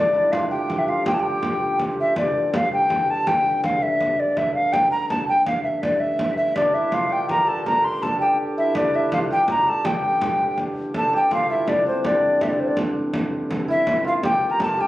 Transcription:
Already playing: harmonium G2 D3, hammered dulcimer D4 F4 G4 A4, recorder D5
0.14 hammered dulcimer E4
0.32 hammered dulcimer F4, recorder F5, frame drum
0.51 hammered dulcimer G4, recorder G5
0.70 frame drum
0.79 recorder E5
0.88 hammered dulcimer F4, recorder F5, frame drum
1.05 hammered dulcimer G4, recorder G5, frame drum
1.14 recorder A5
1.19 hammered dulcimer G4, recorder G5
1.43 frame drum
1.79 frame drum
1.98 recorder E5, frame drum
2.16 harmonium G2 D3, recorder D5, frame drum
2.54 recorder F5, frame drum
2.73 recorder G5
2.90 frame drum
3.09 recorder A5, frame drum
3.27 recorder G5, frame drum
3.64 recorder F5, frame drum
3.82 recorder E5
4.00 frame drum
4.19 recorder D5, frame drum
4.37 recorder E5, frame drum
4.55 recorder F5
4.73 recorder G5, frame drum
4.91 recorder A#5
5.10 recorder A5, frame drum
5.28 recorder G5, frame drum
5.46 recorder F5, frame drum
5.63 recorder E5, frame drum
5.83 recorder D5, frame drum
6.00 recorder E5
6.19 frame drum
6.37 recorder E5
6.56 harmonium G2 D3, hammered dulcimer D4, recorder D5, frame drum
6.74 hammered dulcimer E4, recorder E5
6.92 hammered dulcimer F4, recorder F5, frame drum
7.09 hammered dulcimer G4, recorder G5
7.29 hammered dulcimer A#4, recorder A#5, frame drum
7.47 hammered dulcimer A4, recorder A5, frame drum
7.66 hammered dulcimer A#4, recorder A#5, frame drum
7.84 recorder C6
8.02 hammered dulcimer A4, recorder A5, frame drum
8.20 hammered dulcimer G4, recorder G5
8.57 hammered dulcimer E4, recorder E5, frame drum
8.75 hammered dulcimer D4, recorder D5, frame drum
8.94 hammered dulcimer E4, recorder E5
9.12 hammered dulcimer F4, recorder F5, frame drum
9.23 hammered dulcimer A4
9.31 hammered dulcimer G4, recorder G5
9.48 recorder A#5, frame drum
9.66 hammered dulcimer A4, recorder A5, frame drum
9.85 hammered dulcimer G4, recorder G5, frame drum
10.21 frame drum
10.58 frame drum
10.94 harmonium G2 D3, hammered dulcimer A4, recorder A5, frame drum
11.13 hammered dulcimer G4, recorder G5
11.31 hammered dulcimer F4, recorder F5, frame drum
11.50 hammered dulcimer E4, recorder E5
11.67 hammered dulcimer D4, recorder D5, frame drum
11.86 hammered dulcimer C4, recorder C5
12.04 hammered dulcimer D4, recorder D5, frame drum
12.41 recorder E5, frame drum
12.49 recorder D5
12.60 recorder C5
12.68 recorder D5
12.77 frame drum
13.14 frame drum
13.51 frame drum
13.68 hammered dulcimer E4, recorder E5
13.87 hammered dulcimer E4, frame drum
14.04 hammered dulcimer F4, recorder F5
14.23 hammered dulcimer G4, recorder G5, frame drum
14.42 frame drum
14.50 hammered dulcimer A#4, recorder A#5
14.59 hammered dulcimer A4, recorder A5, frame drum
14.77 hammered dulcimer G4, recorder G5, frame drum

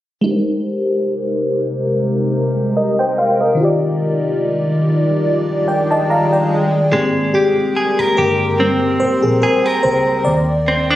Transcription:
0.21 fm electric piano G#3 D#4
0.26 ambient pad C3 G#3 G4 A#4, fm electric piano G4 A#4
0.31 fm electric piano C5
2.77 fm electric piano A#4 D#5
2.99 fm electric piano C5 G5
3.18 fm electric piano C5 F5
3.41 fm electric piano A#4 D#5
3.55 fm electric piano D#3 D#4
3.60 ambient pad D#3 G3 F4 D5, fm electric piano F4 G4
3.65 fm electric piano D5
5.68 fm electric piano D5 G5
5.91 fm electric piano D#5 A5
6.10 fm electric piano F5 A#5
6.32 fm electric piano D5 G5
6.92 fingered electric bass G#1, clean electric guitar G#3, fm electric piano A#3 C4 G4 G#4, ambient pad A#4 G5 C6
7.34 fm electric piano G4, clean electric guitar G4
7.76 clean electric guitar G#4
7.99 clean electric guitar A#4, muted fingered electric bass stroke
8.17 fingered electric bass G1, clean electric guitar G4, fm electric piano A#4
8.59 fm electric piano G3 A#3 C4, clean electric guitar C4
9.00 fm electric piano C5, muted fingered electric bass stroke
9.22 fingered electric bass A#1, fm electric piano G#4
9.42 clean electric guitar G#4, fm electric piano A#4
9.66 clean electric guitar A#4
9.83 fingered electric bass C#2, fm electric piano C5
10.25 fingered electric bass D#2, ambient pad G4 F5 D6, fm electric piano D5
10.68 clean electric guitar C4
10.90 clean electric guitar D4

